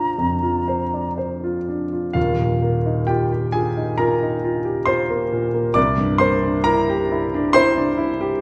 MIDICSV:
0, 0, Header, 1, 3, 480
1, 0, Start_track
1, 0, Tempo, 993377
1, 1043, Time_signature, 4, 2, 24, 8
1, 1043, Tempo, 937500
1, 1523, Tempo, 890208
1, 3923, Tempo, 855920
1, 4407, End_track
2, 0, Start_track
2, 0, Title_t, "Flute"
2, 0, Program_c, 0, 73
2, 0, Note_on_c, 0, 82, 55
2, 547, Note_off_c, 0, 82, 0
2, 4407, End_track
3, 0, Start_track
3, 0, Title_t, "Grand piano"
3, 0, Program_c, 1, 0
3, 0, Control_c, 1, 64, 127
3, 0, Note_on_c, 1, 34, 39
3, 0, Note_on_c, 1, 62, 32
3, 0, Note_on_c, 1, 65, 30
3, 0, Note_on_c, 1, 72, 33
3, 0, Note_on_c, 1, 74, 28
3, 65, Note_off_c, 1, 34, 0
3, 88, Note_on_c, 1, 41, 32
3, 160, Note_off_c, 1, 65, 0
3, 206, Note_on_c, 1, 65, 32
3, 281, Note_off_c, 1, 41, 0
3, 328, Note_off_c, 1, 72, 0
3, 328, Note_on_c, 1, 72, 31
3, 399, Note_off_c, 1, 65, 0
3, 453, Note_off_c, 1, 74, 0
3, 453, Note_on_c, 1, 74, 26
3, 519, Note_off_c, 1, 72, 0
3, 568, Note_on_c, 1, 72, 32
3, 569, Note_off_c, 1, 74, 0
3, 694, Note_on_c, 1, 65, 32
3, 760, Note_off_c, 1, 72, 0
3, 815, Note_off_c, 1, 62, 0
3, 815, Note_on_c, 1, 62, 29
3, 884, Note_off_c, 1, 65, 0
3, 930, Note_on_c, 1, 65, 29
3, 1001, Note_off_c, 1, 62, 0
3, 1031, Note_off_c, 1, 65, 0
3, 1031, Note_on_c, 1, 77, 64
3, 1035, Note_on_c, 1, 27, 46
3, 1038, Note_on_c, 1, 65, 46
3, 1043, Note_on_c, 1, 39, 47
3, 1053, Control_c, 1, 64, 0
3, 1127, Control_c, 1, 64, 127
3, 1162, Note_on_c, 1, 46, 35
3, 1281, Note_on_c, 1, 58, 38
3, 1356, Note_off_c, 1, 46, 0
3, 1402, Note_on_c, 1, 63, 39
3, 1474, Note_off_c, 1, 58, 0
3, 1500, Note_off_c, 1, 65, 0
3, 1508, Note_on_c, 1, 79, 63
3, 1513, Note_on_c, 1, 67, 51
3, 1517, Note_off_c, 1, 77, 0
3, 1518, Note_on_c, 1, 65, 42
3, 1596, Note_off_c, 1, 63, 0
3, 1636, Note_off_c, 1, 67, 0
3, 1644, Note_on_c, 1, 67, 43
3, 1718, Note_off_c, 1, 65, 0
3, 1754, Note_on_c, 1, 80, 64
3, 1759, Note_on_c, 1, 68, 50
3, 1762, Note_off_c, 1, 79, 0
3, 1762, Note_on_c, 1, 65, 40
3, 1842, Note_off_c, 1, 67, 0
3, 1888, Note_on_c, 1, 63, 37
3, 1962, Note_off_c, 1, 65, 0
3, 1991, Note_off_c, 1, 68, 0
3, 1997, Note_on_c, 1, 82, 71
3, 2003, Note_on_c, 1, 70, 53
3, 2006, Note_off_c, 1, 80, 0
3, 2007, Note_on_c, 1, 65, 44
3, 2084, Note_off_c, 1, 63, 0
3, 2132, Note_on_c, 1, 63, 40
3, 2202, Note_off_c, 1, 65, 0
3, 2249, Note_on_c, 1, 65, 41
3, 2323, Note_off_c, 1, 63, 0
3, 2361, Note_on_c, 1, 67, 43
3, 2440, Note_off_c, 1, 65, 0
3, 2462, Note_off_c, 1, 70, 0
3, 2471, Note_on_c, 1, 84, 74
3, 2478, Note_on_c, 1, 72, 56
3, 2481, Note_off_c, 1, 82, 0
3, 2482, Note_on_c, 1, 65, 43
3, 2555, Note_off_c, 1, 67, 0
3, 2601, Note_on_c, 1, 58, 41
3, 2675, Note_off_c, 1, 65, 0
3, 2724, Note_on_c, 1, 46, 40
3, 2795, Note_off_c, 1, 58, 0
3, 2841, Note_on_c, 1, 58, 43
3, 2914, Note_off_c, 1, 46, 0
3, 2936, Note_off_c, 1, 27, 0
3, 2936, Note_off_c, 1, 72, 0
3, 2941, Note_off_c, 1, 39, 0
3, 2949, Note_on_c, 1, 86, 91
3, 2954, Note_off_c, 1, 84, 0
3, 2954, Note_on_c, 1, 74, 65
3, 2961, Note_off_c, 1, 58, 0
3, 2961, Note_on_c, 1, 36, 60
3, 2972, Control_c, 1, 64, 0
3, 3051, Control_c, 1, 64, 127
3, 3077, Note_on_c, 1, 43, 45
3, 3178, Note_off_c, 1, 74, 0
3, 3188, Note_on_c, 1, 84, 84
3, 3192, Note_off_c, 1, 86, 0
3, 3195, Note_on_c, 1, 72, 65
3, 3200, Note_on_c, 1, 58, 47
3, 3270, Note_off_c, 1, 43, 0
3, 3323, Note_on_c, 1, 62, 47
3, 3393, Note_off_c, 1, 58, 0
3, 3422, Note_off_c, 1, 72, 0
3, 3433, Note_on_c, 1, 82, 91
3, 3436, Note_off_c, 1, 84, 0
3, 3438, Note_on_c, 1, 70, 65
3, 3444, Note_on_c, 1, 64, 54
3, 3517, Note_off_c, 1, 62, 0
3, 3571, Note_on_c, 1, 67, 53
3, 3638, Note_off_c, 1, 64, 0
3, 3691, Note_on_c, 1, 64, 56
3, 3761, Note_off_c, 1, 67, 0
3, 3813, Note_on_c, 1, 62, 54
3, 3879, Note_off_c, 1, 64, 0
3, 3899, Note_off_c, 1, 70, 0
3, 3915, Note_on_c, 1, 84, 102
3, 3918, Note_off_c, 1, 82, 0
3, 3921, Note_on_c, 1, 72, 76
3, 3926, Note_on_c, 1, 64, 63
3, 3999, Note_off_c, 1, 62, 0
3, 4045, Note_on_c, 1, 62, 53
3, 4117, Note_off_c, 1, 64, 0
3, 4164, Note_on_c, 1, 64, 57
3, 4236, Note_off_c, 1, 62, 0
3, 4293, Note_on_c, 1, 67, 57
3, 4355, Note_off_c, 1, 64, 0
3, 4407, Note_off_c, 1, 36, 0
3, 4407, Note_off_c, 1, 67, 0
3, 4407, Note_off_c, 1, 72, 0
3, 4407, Note_off_c, 1, 84, 0
3, 4407, End_track
0, 0, End_of_file